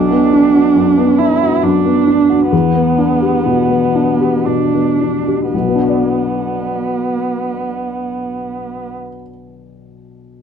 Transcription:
0.00 2.48 B1 soft
0.00 1.20 D4 medium
0.11 0.45 B3 soft
0.33 0.67 D4 soft
0.54 0.88 F#4 soft
0.76 1.10 F#2 soft
0.98 1.32 B3 soft
1.19 1.55 D4 soft
1.19 1.64 E4 medium
1.41 1.76 F#4 soft
1.63 1.98 F#2 soft
1.63 2.51 D4 medium
1.85 2.20 B3 soft
2.07 2.43 D4 soft
2.30 2.52 F#4 soft
2.52 5.49 E2 soft
2.52 4.47 B3 medium
2.75 3.12 B3 soft
2.98 3.36 D4 soft
3.22 3.60 G4 soft
3.46 3.85 B2 soft
3.70 4.10 B3 soft
3.95 4.36 D4 soft
4.21 4.62 G4 soft
4.45 4.89 B2 soft
4.45 5.51 D4 soft
4.74 5.16 B3 soft
5.00 5.43 D4 soft
5.28 5.54 G4 soft
5.52 8.94 B1 soft
5.52 8.92 B3 soft
5.61 9.01 B2 soft
5.68 9.08 B3 soft
5.75 9.15 D4 soft
5.82 9.21 F#4 soft
5.89 9.28 D5 soft

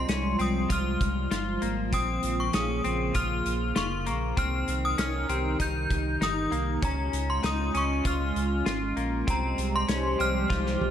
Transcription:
0.00 4.33 F3 medium
0.00 1.90 G3 medium
0.00 1.89 G#3 medium
0.00 4.34 F4 medium
0.00 0.42 C6 medium
0.09 0.36 C2 loud
0.09 0.38 C#4 medium
0.09 snare loud
0.09 closed hi-hat medium
0.39 0.67 C2 medium
0.39 0.70 C4 medium
0.39 0.72 D#6 medium
0.39 closed hi-hat soft
0.70 0.97 C2 loud
0.70 1.30 F4 medium
0.70 1.59 F6 medium
0.70 kick medium
0.70 closed hi-hat medium
1.01 1.28 C2 loud
1.01 kick medium
1.01 closed hi-hat soft
1.31 1.58 G1 medium
1.31 1.62 F4 medium
1.31 snare medium
1.31 closed hi-hat soft
1.62 1.94 G#1 medium
1.62 1.93 A#3 medium
1.62 closed hi-hat soft
1.92 2.20 A#1 medium
1.92 4.35 C#3 medium
1.92 4.35 A#3 medium
1.92 2.53 C4 medium
1.92 2.36 D#6 medium
1.92 kick medium
1.92 closed hi-hat medium
2.23 2.50 A#1 medium
2.23 closed hi-hat soft
2.40 2.55 C#6 medium
2.53 2.81 A#1 loud
2.53 2.84 C#4 medium
2.53 4.64 G#4 medium
2.53 3.18 D#6 medium
2.53 snare loud
2.53 closed hi-hat medium
2.84 3.12 A#1 medium
2.84 3.15 C4 medium
2.84 closed hi-hat soft
3.15 3.42 A#1 loud
3.15 3.74 F4 medium
3.15 3.78 F6 medium
3.15 kick medium
3.15 closed hi-hat medium
3.46 3.73 A#1 loud
3.46 closed hi-hat soft
3.76 4.09 F1 medium
3.76 4.07 F4 medium
3.76 4.20 C#6 medium
3.76 snare medium
3.76 closed hi-hat medium
4.07 4.34 A#1 medium
4.07 4.37 A#3 medium
4.07 closed hi-hat soft
4.37 4.64 C2 loud
4.37 6.80 D#3 medium
4.37 4.98 C4 medium
4.37 6.80 D#4 medium
4.37 4.85 F6 medium
4.37 kick medium
4.37 closed hi-hat medium
4.68 4.95 C2 medium
4.68 closed hi-hat soft
4.85 4.99 D#6 medium
4.98 5.26 C2 medium
4.98 5.29 C#4 medium
4.98 5.62 F6 medium
4.98 snare loud
4.98 closed hi-hat medium
5.29 5.56 C2 loud
5.29 5.59 C4 medium
5.29 7.09 G4 medium
5.29 closed hi-hat soft
5.60 5.87 C2 loud
5.60 6.20 D#4 medium
5.60 6.24 G6 medium
5.60 kick medium
5.60 closed hi-hat medium
5.90 6.18 C2 loud
5.90 kick medium
5.90 closed hi-hat soft
6.21 6.48 G1 medium
6.21 6.52 D#4 medium
6.21 6.65 D#6 medium
6.21 snare medium
6.21 closed hi-hat medium
6.52 6.79 C2 medium
6.52 6.82 A#3 medium
6.52 closed hi-hat soft
6.81 7.10 C#2 medium
6.81 9.25 G#3 medium
6.81 9.25 C#4 medium
6.81 7.43 C#4 medium
6.81 9.24 F4 medium
6.81 7.31 A#5 medium
6.81 kick medium
6.81 closed hi-hat medium
7.13 7.40 C#2 loud
7.13 closed hi-hat soft
7.30 7.45 C6 medium
7.43 7.71 C#2 loud
7.43 7.74 D#4 medium
7.43 7.76 D#6 medium
7.43 snare loud
7.43 closed hi-hat medium
7.74 8.02 C#2 loud
7.74 8.05 C#4 medium
7.74 8.07 C#6 medium
7.74 closed hi-hat soft
8.05 8.32 C#2 medium
8.05 8.65 F4 medium
8.05 8.94 F6 medium
8.05 kick medium
8.05 closed hi-hat medium
8.36 8.63 C#2 medium
8.36 closed hi-hat soft
8.66 8.93 G#1 medium
8.66 8.97 F4 medium
8.66 snare medium
8.66 closed hi-hat medium
8.97 9.24 A#1 medium
8.97 9.27 A#3 medium
8.97 closed hi-hat soft
9.27 9.55 C2 loud
9.27 10.91 F3 medium
9.27 10.91 G3 medium
9.27 10.91 G#3 medium
9.27 9.88 C4 medium
9.27 10.91 G4 medium
9.27 10.91 C5 medium
9.27 9.76 A#5 medium
9.27 kick medium
9.27 closed hi-hat medium
9.58 9.85 C2 medium
9.58 closed hi-hat soft
9.76 10.22 C6 medium
9.88 10.16 C2 loud
9.88 10.18 C#4 medium
9.88 snare loud
9.88 closed hi-hat medium
10.19 10.46 C2 medium
10.19 10.50 C4 medium
10.19 10.91 F6 medium
10.19 closed hi-hat soft
10.50 10.77 C2 medium
10.50 10.91 F4 medium
10.50 kick medium
10.50 snare soft
10.66 snare soft
10.81 10.91 C2 loud
10.81 10.91 F4 soft
10.81 high tom medium

